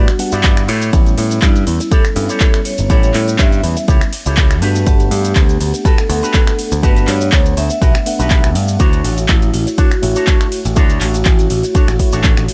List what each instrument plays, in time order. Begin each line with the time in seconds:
Already playing: tine electric piano G3 B3 D4 F#5, vibraphone F#4
0.08 finger snap, closed hi-hat, maracas
0.19 tine electric piano G3 B3 D4 F#5, muted clean electric guitar stroke, open hi-hat, ride, cabasa
0.32 picked electric bass G2, clean electric guitar E4 G4 B4 D5, closed hi-hat, cabasa, maracas
0.43 kick, clap, closed hi-hat, ride, cabasa, maracas
0.57 finger snap, closed hi-hat, maracas
0.68 picked electric bass A2, clean electric guitar E4 G4 A4 C#5, open hi-hat, ride, cabasa
0.82 closed hi-hat, cabasa, maracas
0.92 picked electric bass A1, tine electric piano G3 B3 C#4 E4, kick, closed hi-hat, ride, cabasa, maracas
1.06 closed hi-hat, maracas
1.18 picked electric bass A2, open hi-hat, ride, cabasa
1.31 closed hi-hat, cabasa, maracas
1.42 picked electric bass G2, vibraphone E4, kick, clap, closed hi-hat, ride, cabasa, maracas
1.56 closed hi-hat, maracas
1.67 picked electric bass E2, vibraphone E4, muted clean electric guitar stroke, open hi-hat, ride, cabasa
1.80 muted clean electric guitar stroke, closed hi-hat, cabasa, maracas
1.91 clean electric guitar E4 G4 A4 C#5, vibraphone A4, kick, closed hi-hat, ride, cabasa, maracas
2.05 finger snap, closed hi-hat, maracas
2.15 picked electric bass G2, tine electric piano G3 B3 C#4 E4, muted clean electric guitar stroke, open hi-hat, ride, cabasa
2.29 clean electric guitar E4 G4 A4 C#5, closed hi-hat, cabasa, maracas
2.40 vibraphone A4, kick, clap, closed hi-hat, ride, cabasa, maracas
2.54 finger snap, closed hi-hat, maracas
2.65 vibraphone C#5, open hi-hat, ride, cabasa
2.78 picked electric bass G1, closed hi-hat, cabasa, maracas
2.89 picked electric bass A1, tine electric piano G3 B3 C#4 E4, clean electric guitar E4 G4 A4 C#5, vibraphone C#5, kick, closed hi-hat, ride, cabasa, maracas
3.03 closed hi-hat, maracas
3.14 picked electric bass A2, clap, open hi-hat, ride, cabasa
3.28 closed hi-hat, cabasa, maracas
3.39 picked electric bass G2, vibraphone E5, kick, clap, closed hi-hat, ride, cabasa, maracas
3.52 closed hi-hat, maracas
3.63 picked electric bass E2, muted clean electric guitar stroke, open hi-hat, ride, cabasa
3.77 muted clean electric guitar stroke, closed hi-hat, cabasa, maracas
3.88 picked electric bass C#2, clean electric guitar E4 G4 A4 C#5, kick, closed hi-hat, ride, cabasa, maracas
4.01 finger snap, closed hi-hat, maracas
4.13 muted clean electric guitar stroke, open hi-hat, ride, cabasa
4.26 picked electric bass C#2, clean electric guitar E4 G4 A4 C#5, closed hi-hat, cabasa, maracas
4.37 kick, clap, closed hi-hat, ride, cabasa, maracas
4.51 finger snap, closed hi-hat, maracas
4.62 picked electric bass G2, tine electric piano A3 B3 D4 F#4, clean electric guitar F#4 G4 A4 B4, vibraphone B4, open hi-hat, ride, cabasa
4.75 closed hi-hat, cabasa, maracas
4.86 picked electric bass G1, tine electric piano A3 B3 D4 F#5, vibraphone G4, kick, closed hi-hat, ride, cabasa, maracas
5.00 closed hi-hat, maracas
5.11 picked electric bass G2, vibraphone G4, open hi-hat, ride, cabasa
5.25 closed hi-hat, cabasa, maracas
5.36 picked electric bass D2, kick, clap, closed hi-hat, ride, cabasa, maracas
5.49 closed hi-hat, maracas
5.60 picked electric bass D2, muted clean electric guitar stroke, open hi-hat, ride, cabasa
5.73 muted clean electric guitar stroke, closed hi-hat, cabasa, maracas
5.84 clean electric guitar F#4 G4 A4 B4, vibraphone A4, kick, closed hi-hat, ride, cabasa, maracas
5.98 finger snap, closed hi-hat, maracas
6.09 picked electric bass D2, tine electric piano A3 B3 D4 F#5, vibraphone A4, muted clean electric guitar stroke, open hi-hat, ride, cabasa
6.22 clean electric guitar F#4 G4 A4 B4, closed hi-hat, cabasa, maracas
6.34 kick, clap, closed hi-hat, ride, cabasa, maracas
6.47 finger snap, closed hi-hat, maracas
6.59 open hi-hat, ride, cabasa
6.72 picked electric bass D2, closed hi-hat, cabasa, maracas
6.82 picked electric bass G1, tine electric piano A3 B3 D4 F#5, clean electric guitar F#4 G4 A4 B4, vibraphone B4, kick, closed hi-hat, ride, cabasa, maracas
6.96 closed hi-hat, maracas
7.07 picked electric bass G2, vibraphone C#5, clap, open hi-hat, ride, cabasa
7.21 closed hi-hat, cabasa, maracas
7.32 picked electric bass D2, kick, clap, closed hi-hat, ride, cabasa, maracas
7.46 closed hi-hat, maracas
7.57 picked electric bass D2, vibraphone E5, muted clean electric guitar stroke, open hi-hat, ride, cabasa
7.70 muted clean electric guitar stroke, closed hi-hat, cabasa, maracas
7.81 picked electric bass B1, clean electric guitar F#4 G4 A4 B4, kick, closed hi-hat, ride, cabasa, maracas
7.95 finger snap, closed hi-hat, maracas
8.05 tine electric piano A3 B3 D4 F#5, muted clean electric guitar stroke, open hi-hat, ride, cabasa
8.19 picked electric bass B1, clean electric guitar F#4 G4 A4 B4, closed hi-hat, cabasa, maracas
8.30 kick, clap, closed hi-hat, ride, cabasa, maracas
8.44 finger snap, closed hi-hat, maracas
8.55 picked electric bass G2, open hi-hat, ride, cabasa
8.68 closed hi-hat, cabasa, maracas
8.79 picked electric bass D2, tine electric piano A3 E4 F#4 C#5, clean electric guitar D4 F#4 A4 C#5, kick, closed hi-hat, ride, cabasa, maracas
8.93 closed hi-hat, maracas
9.04 picked electric bass A1, open hi-hat, ride, cabasa
9.18 closed hi-hat, cabasa, maracas
9.28 picked electric bass A1, vibraphone E4, kick, clap, closed hi-hat, ride, cabasa, maracas
9.42 closed hi-hat, maracas
9.53 picked electric bass A1, vibraphone E4, muted clean electric guitar stroke, open hi-hat, ride, cabasa
9.67 muted clean electric guitar stroke, closed hi-hat, cabasa, maracas
9.77 clean electric guitar D4 F#4 A4 C#5, vibraphone F#4, kick, closed hi-hat, ride, cabasa, maracas
9.91 finger snap, closed hi-hat, maracas
10.02 picked electric bass A1, tine electric piano A3 E4 F#4 C#5, muted clean electric guitar stroke, open hi-hat, ride, cabasa
10.16 clean electric guitar D4 F#4 A4 C#5, closed hi-hat, cabasa, maracas
10.27 kick, clap, closed hi-hat, ride, cabasa, maracas
10.41 finger snap, closed hi-hat, maracas
10.52 open hi-hat, ride, cabasa
10.65 picked electric bass A1, closed hi-hat, cabasa, maracas
10.75 picked electric bass D2, tine electric piano A3 E4 F#4 C#5, clean electric guitar D4 F#4 A4 C#5, vibraphone F#4, kick, closed hi-hat, ride, cabasa, maracas
10.90 closed hi-hat, maracas
11.01 picked electric bass A1, clap, open hi-hat, ride, cabasa
11.14 closed hi-hat, cabasa, maracas
11.25 kick, clap, closed hi-hat, ride, cabasa, maracas
11.39 closed hi-hat, maracas
11.50 picked electric bass A1, muted clean electric guitar stroke, open hi-hat, ride, cabasa
11.63 muted clean electric guitar stroke, closed hi-hat, cabasa, maracas
11.74 clean electric guitar D4 F#4 A4 C#5, kick, closed hi-hat, ride, cabasa, maracas
11.88 picked electric bass A1, finger snap, closed hi-hat, maracas
11.99 tine electric piano A3 E4 F#4 C#5, muted clean electric guitar stroke, kick, open hi-hat, ride, cabasa
12.12 picked electric bass A1, clean electric guitar D4 F#4 A4 C#5, closed hi-hat, cabasa, maracas
12.24 kick, clap, closed hi-hat, ride, cabasa, maracas
12.37 picked electric bass A1, finger snap, closed hi-hat, maracas
12.48 open hi-hat, ride, cabasa